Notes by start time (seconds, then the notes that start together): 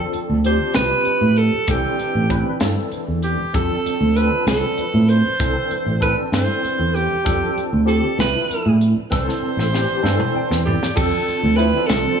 Already playing: F3 C4 D4 A4
0.13 muted fingered electric bass stroke, closed hi-hat
0.29 D2
0.44 F3 C4 D4 G4 C5, closed hi-hat
0.74 C2 F3 C4 D4 G4 B4, snare, closed hi-hat
1.05 muted fingered electric bass stroke, closed hi-hat
1.21 A2
1.36 A4, closed hi-hat
1.53 muted fingered electric bass stroke
1.67 C2 E3 C4 D4 G4 A4, kick, closed hi-hat
1.99 muted fingered electric bass stroke, closed hi-hat
2.15 A1
2.29 E3 C4 D4 B4, kick, closed hi-hat
2.60 G2 E3 C4 D4 A4, snare, closed hi-hat
2.92 muted fingered electric bass stroke, closed hi-hat
3.08 E2
3.22 G4, closed hi-hat
3.39 muted fingered electric bass stroke
3.53 F2 F3 C4 D4 A4, kick, closed hi-hat
3.86 muted fingered electric bass stroke, closed hi-hat
4.01 D2
4.16 F3 C4 D4 A4 B4, closed hi-hat
4.46 C2 F3 C4 D4 A4 B4, snare, closed hi-hat
4.78 muted fingered electric bass stroke, closed hi-hat
4.94 A2
5.09 C5, closed hi-hat
5.25 muted fingered electric bass stroke
5.39 C2 E3 C4 D4 A4, kick, closed hi-hat
5.71 muted fingered electric bass stroke, closed hi-hat
5.86 A1
6.00 E3 C4 D4 A4 B4, kick, closed hi-hat
6.31 G2 E3 C4 D4 A4 C5, snare, closed hi-hat
6.64 muted fingered electric bass stroke, closed hi-hat
6.79 E2
6.95 G4, closed hi-hat
7.24 F2 F3 C4 D4 A4, kick, closed hi-hat
7.57 muted fingered electric bass stroke, closed hi-hat
7.73 D2
7.85 F3 C4 D4 G4 A4, closed hi-hat
8.17 C2 F3 C4 D4 E4 B4, snare, closed hi-hat
8.50 muted fingered electric bass stroke, closed hi-hat
8.66 A2
8.81 closed hi-hat
8.96 muted fingered electric bass stroke
9.10 C2 E3 C4 D4 A4 C5, kick, snare
9.29 snare
9.42 muted fingered electric bass stroke
9.57 A1, snare
9.72 E3 C4 D4 G4, snare
10.02 G2 E3 C4 D4 A4, snare
10.20 mid tom
10.35 G5, muted fingered electric bass stroke
10.51 E2, snare
10.65 G4 D5, floor tom
10.81 muted fingered electric bass stroke, snare
10.95 F2 F3 C4 D4 A4, kick, crash
11.28 muted fingered electric bass stroke, closed hi-hat
11.43 D2
11.56 F3 C4 D4 E4 B4, closed hi-hat
11.87 C2 F3 C4 D4 A4, snare, closed hi-hat